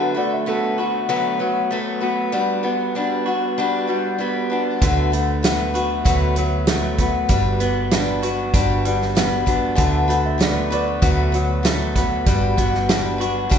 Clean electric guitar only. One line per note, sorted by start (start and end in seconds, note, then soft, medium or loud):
0.00 1.40 D3 medium
0.00 0.16 B3 medium
0.00 0.47 D4 medium
0.00 0.78 F#4 medium
0.16 1.70 A3 medium
0.47 1.08 B3 medium
0.78 2.37 F#4 medium
1.09 2.02 B3 medium
1.40 2.33 F#3 medium
1.71 2.33 A3 medium
2.03 2.64 B3 medium
2.34 3.88 G3 medium
2.64 4.20 B3 medium
2.96 3.58 D4 medium
3.26 5.74 F#4 medium
3.58 4.51 D4 medium
3.89 4.82 G3 medium
4.20 5.13 B3 medium
4.52 5.44 D4 medium
4.83 6.37 D3 medium
5.13 6.67 A3 medium
5.44 6.06 B3 medium
5.75 7.32 F#4 medium
6.06 6.98 B3 medium
6.38 7.29 F#3 medium
6.68 7.30 A3 medium
6.99 7.60 B3 medium
7.29 8.84 G3 medium
7.60 9.17 B3 medium
7.92 8.53 D4 medium
8.23 10.72 F#4 medium
8.54 9.48 D4 medium
8.85 9.78 G3 medium
9.17 10.09 B3 medium
9.48 10.40 D4 medium
9.78 11.33 D3 medium
10.09 11.64 A3 medium
10.41 11.03 B3 medium
10.72 12.30 F#4 medium
11.03 11.96 B3 medium
11.35 12.27 F#3 medium
11.65 12.27 A3 medium
11.96 12.58 B3 medium
12.27 13.59 G3 medium
12.58 13.59 B3 medium
12.89 13.50 D4 medium
13.21 13.59 F#4 medium
13.52 13.59 D4 medium